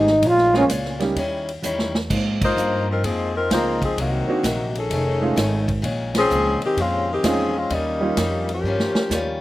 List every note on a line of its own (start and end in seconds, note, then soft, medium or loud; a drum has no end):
0.00 0.21 G#1 medium
0.00 0.29 D#4 medium
0.07 snare soft
0.22 0.68 A#1 loud
0.22 0.55 A#2 medium
0.22 0.56 G#3 soft
0.22 0.56 C#4 soft
0.22 0.57 F4 medium
0.22 kick soft
0.22 ride medium
0.27 0.56 F4 loud
0.38 snare soft
0.53 0.65 C#3 medium
0.53 0.68 G#3 medium
0.53 0.64 G#3 medium
0.53 0.68 A#3 medium
0.53 0.65 A#3 medium
0.53 0.68 C4 medium
0.53 0.68 C#4 medium
0.53 0.64 F4 medium
0.53 0.69 F4 medium
0.53 snare soft
0.58 0.66 C#4 medium
0.69 1.15 C#2 medium
0.69 1.02 A#2 medium
0.69 1.03 G#3 medium
0.69 1.03 C#4 medium
0.69 1.03 F4 medium
0.69 kick soft
0.69 hi-hat pedal medium
0.69 ride medium
0.85 snare soft
0.99 1.14 G3 medium
0.99 1.14 A#3 medium
0.99 1.15 C#4 medium
0.99 1.15 D#4 medium
0.99 1.15 G4 medium
0.99 snare soft
0.99 ride soft
1.16 1.61 D#2 medium
1.16 1.49 D#3 medium
1.16 1.50 G3 medium
1.16 1.50 C#4 medium
1.16 1.51 E4 medium
1.16 kick soft
1.16 ride medium
1.49 ride medium
1.62 2.08 E2 medium
1.62 1.96 D#3 medium
1.62 1.96 G3 medium
1.62 1.97 C#4 medium
1.62 1.97 E4 medium
1.62 hi-hat pedal medium
1.79 snare medium
1.95 snare medium
2.10 2.55 G#2 medium
2.10 2.42 G#2 soft
2.10 2.43 F3 medium
2.10 2.44 A#3 medium
2.10 2.44 C4 medium
2.10 kick medium
2.10 crash medium
2.42 2.86 A#3 medium
2.42 2.86 D#4 medium
2.42 2.86 F4 medium
2.42 2.86 C5 loud
2.42 kick medium
2.42 crash medium
2.56 3.02 G2 medium
2.56 2.89 G#2 soft
2.56 2.90 F3 medium
2.56 2.90 A#3 medium
2.56 2.91 C4 medium
2.56 hi-hat pedal medium
2.90 3.03 F3 medium
2.90 3.03 C4 medium
2.90 3.02 D#4 medium
2.90 3.04 A#4 medium
3.03 3.48 F2 medium
3.03 3.36 G#2 soft
3.03 3.34 F3 medium
3.03 3.37 F3 medium
3.03 3.37 A#3 soft
3.03 3.35 C4 medium
3.03 3.37 C4 medium
3.03 3.34 D#4 medium
3.03 3.35 G#4 medium
3.03 kick soft
3.03 ride medium
3.35 3.49 F3 medium
3.35 3.49 C4 medium
3.35 3.49 D#4 medium
3.35 3.49 A#4 loud
3.50 3.95 C#2 medium
3.50 3.83 G#2 medium
3.50 3.83 F3 medium
3.50 3.78 G#3 medium
3.50 3.78 A#3 medium
3.50 3.80 A#3 medium
3.50 3.84 A#3 medium
3.50 3.78 C4 medium
3.50 3.84 C4 medium
3.50 3.79 D#4 medium
3.50 3.80 D#4 medium
3.50 3.79 F4 medium
3.50 3.80 F4 medium
3.50 3.80 C5 medium
3.50 kick soft
3.50 snare medium
3.50 hi-hat pedal medium
3.50 ride medium
3.82 3.97 F3 medium
3.82 3.97 C4 medium
3.82 3.97 D#4 medium
3.82 3.97 G#4 medium
3.82 kick medium
3.82 ride soft
3.96 4.25 C2 medium
3.96 4.30 C3 soft
3.96 4.71 D#3 medium
3.96 4.30 F#3 soft
3.96 4.71 A#3 medium
3.96 4.31 A#3 soft
3.96 4.72 C4 medium
3.96 4.72 F#4 medium
3.96 kick soft
3.96 ride medium
4.00 4.31 D#4 medium
4.28 4.42 A#3 medium
4.28 4.42 C4 medium
4.28 4.42 D4 medium
4.28 4.42 D#4 medium
4.28 4.43 F#4 medium
4.28 muted upright bass stroke soft
4.43 4.89 A#1 medium
4.43 4.76 C3 medium
4.43 4.77 F#3 medium
4.43 4.77 A#3 medium
4.43 4.77 D#4 medium
4.43 kick soft
4.43 snare medium
4.43 hi-hat pedal medium
4.43 ride medium
4.75 5.65 D#3 medium
4.75 5.66 C#4 medium
4.75 5.65 G#4 medium
4.75 5.66 A4 medium
4.75 ride soft
4.90 5.35 F1 medium
4.90 5.23 F2 medium
4.90 5.23 D#3 medium
4.90 5.24 A3 medium
4.90 5.24 C#4 medium
4.90 kick soft
4.90 ride medium
5.21 5.35 G#3 medium
5.21 5.35 A3 medium
5.21 5.35 C#4 medium
5.21 5.35 D#4 medium
5.21 5.36 F4 medium
5.36 5.82 G#1 medium
5.36 5.69 F2 medium
5.36 5.70 D#3 medium
5.36 5.70 A3 medium
5.36 5.70 C#4 medium
5.36 kick soft
5.36 snare medium
5.36 hi-hat pedal medium
5.36 ride medium
5.68 kick medium
5.68 ride soft
5.82 6.29 A#1 medium
5.82 6.16 A#2 medium
5.82 6.16 D#3 medium
5.82 6.16 G#3 medium
5.82 6.17 C#4 medium
5.82 kick soft
5.82 ride medium
6.15 6.60 F3 loud
6.15 6.60 C4 medium
6.15 6.60 C#4 medium
6.15 6.60 G#4 loud
6.15 snare medium
6.15 ride medium
6.30 6.59 C#2 medium
6.30 6.63 A#2 medium
6.30 6.63 D#3 medium
6.30 6.64 G#3 medium
6.30 6.64 C#4 medium
6.30 hi-hat pedal medium
6.62 6.79 D#3 medium
6.62 6.78 G#3 medium
6.62 6.79 C4 medium
6.62 6.79 G4 loud
6.62 ride soft
6.77 7.22 F2 medium
6.77 7.10 A#2 soft
6.77 7.11 D#3 soft
6.77 7.11 G#3 medium
6.77 7.10 G#3 medium
6.77 7.10 C4 medium
6.77 7.10 C#4 medium
6.77 7.10 F4 loud
6.77 kick soft
6.77 ride medium
6.81 7.12 C#4 medium
7.12 7.25 D#3 medium
7.12 7.25 G#3 medium
7.12 7.25 C4 medium
7.12 7.25 G4 loud
7.23 7.69 E2 medium
7.23 7.57 A#2 medium
7.23 7.57 D#3 medium
7.23 7.56 F3 medium
7.23 7.52 G#3 medium
7.23 7.58 G#3 medium
7.23 7.52 C4 medium
7.23 7.56 C4 medium
7.23 7.52 C#4 medium
7.23 7.58 C#4 medium
7.23 7.57 C#4 medium
7.23 7.53 D#4 medium
7.23 7.53 F4 medium
7.23 7.56 G#4 loud
7.23 kick soft
7.23 snare medium
7.23 hi-hat pedal medium
7.23 ride medium
7.57 7.72 G#3 medium
7.57 7.72 C4 medium
7.57 7.72 C#4 medium
7.57 7.72 F4 medium
7.70 8.16 D#2 medium
7.70 8.03 D#3 medium
7.70 8.04 G3 soft
7.70 8.04 C#4 medium
7.70 8.50 D#4 medium
7.70 8.05 F4 medium
7.70 kick soft
7.70 ride medium
7.74 8.51 G3 medium
7.74 8.51 A#3 medium
7.74 8.51 C#4 medium
8.01 8.15 G3 medium
8.01 8.16 A#3 medium
8.01 8.16 C#4 medium
8.01 8.16 D#4 medium
8.01 8.16 F4 medium
8.17 8.63 F2 medium
8.17 8.51 D#3 medium
8.17 8.51 G3 medium
8.17 8.52 C#4 medium
8.17 8.52 F4 medium
8.17 kick soft
8.17 snare medium
8.17 hi-hat pedal medium
8.17 ride medium
8.49 9.40 F3 medium
8.49 9.41 A#3 medium
8.49 9.40 C#4 medium
8.49 9.41 G4 medium
8.49 ride soft
8.63 8.93 G2 medium
8.63 8.98 D#3 soft
8.63 8.98 G3 medium
8.67 8.99 C#4 soft
8.67 8.99 F4 medium
8.80 snare medium
8.94 muted upright bass stroke soft
8.94 snare medium
9.10 9.41 D#2 medium
9.10 9.41 D#3 medium
9.10 9.41 G3 medium
9.10 9.41 C#4 medium
9.10 9.41 F4 medium
9.10 snare medium
9.10 hi-hat pedal medium